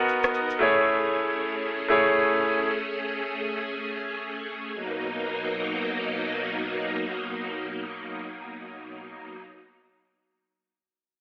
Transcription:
Already playing: string machine B3 D#4 A#4, grand piano B3 F#4 A#4 D#5 F#5
0.09 shaker
0.23 cross-stick, shaker
0.34 shaker
0.50 shaker
0.59 grand piano A3 E4 G#4 C#5, string machine A3 C#4 G#4
1.88 grand piano A3 E4 G#4 C#5
4.74 string machine B2 F#3 A#3 D#4

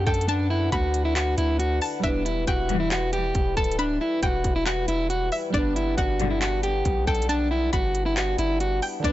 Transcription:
Already playing: grand piano D3 A3 D4 A4, harmonium D3 D4 A4 F#5
0.07 808-style bass F#2, clean electric guitar A4, synth pluck G5, kick, closed hi-hat
0.14 closed hi-hat
0.21 closed hi-hat
0.28 clean electric guitar D4, harmonium B4, synth pluck A5, closed hi-hat
0.50 clean electric guitar E4
0.72 808-style bass D2, clean electric guitar F#4, synth pluck B5, kick, closed hi-hat
0.94 closed hi-hat
1.05 clean electric guitar E4
1.16 clean electric guitar F#4, clap, closed hi-hat
1.38 808-style bass D2, clean electric guitar E4, closed hi-hat
1.59 clean electric guitar F#4, closed hi-hat
1.82 synth pluck A5, open hi-hat
2.00 808-style bass E1, grand piano G3 B3, clean electric guitar D4, synth pluck E5, kick, closed hi-hat
2.04 harmonium E3 G3 E4, grand piano E4
2.08 grand piano B4
2.25 clean electric guitar E4, closed hi-hat
2.47 808-style bass E1, clean electric guitar F#4, synth pluck G5, kick, closed hi-hat
2.69 808-style bass E1, string section B1 G2 E3, closed hi-hat
2.80 clean electric guitar E4
2.91 clean electric guitar F#4, clap, closed hi-hat
3.13 clean electric guitar G4, closed hi-hat
3.35 808-style bass E1, kick, closed hi-hat
3.57 clean electric guitar A4, synth pluck A5, kick, closed hi-hat
3.64 closed hi-hat
3.72 closed hi-hat
3.79 clean electric guitar D4, synth pluck B5, closed hi-hat
4.01 clean electric guitar E4
4.23 808-style bass E1, clean electric guitar F#4, synth pluck G5, kick, closed hi-hat
4.44 808-style bass E1, kick, closed hi-hat
4.56 clean electric guitar E4
4.66 clean electric guitar F#4, synth pluck F#5, clap, closed hi-hat
4.88 808-style bass E1, clean electric guitar E4, closed hi-hat
5.10 clean electric guitar F#4, closed hi-hat
5.32 synth pluck E5, open hi-hat
5.50 grand piano G3 B3, clean electric guitar D4, closed hi-hat
5.54 808-style bass G1, harmonium G3 B3 D4, grand piano D4, synth pluck D5, kick
5.59 grand piano B4
5.76 clean electric guitar E4, closed hi-hat
5.98 808-style bass G1, clean electric guitar F#4, synth pluck F#5, kick, closed hi-hat
6.20 808-style bass G1, string section B1 G2 D3, closed hi-hat
6.30 clean electric guitar E4
6.42 clean electric guitar F#4, clap, closed hi-hat
6.63 clean electric guitar G4, closed hi-hat
6.85 808-style bass B1, kick, closed hi-hat
7.07 808-style bass B1, clean electric guitar A4, synth pluck G5, kick, closed hi-hat
7.15 closed hi-hat
7.22 closed hi-hat
7.29 clean electric guitar D4, synth pluck A5, closed hi-hat
7.51 clean electric guitar E4
7.73 808-style bass G1, clean electric guitar F#4, synth pluck B5, kick, closed hi-hat
7.95 closed hi-hat
8.06 clean electric guitar E4
8.17 clean electric guitar F#4, clap, closed hi-hat
8.39 808-style bass G1, clean electric guitar E4, closed hi-hat
8.60 clean electric guitar F#4, closed hi-hat
8.82 synth pluck G5, open hi-hat
9.00 grand piano D3 B3
9.04 808-style bass B1, harmonium D3 B3, clean electric guitar D4, grand piano D4, synth pluck D5, kick, closed hi-hat
9.08 grand piano B4

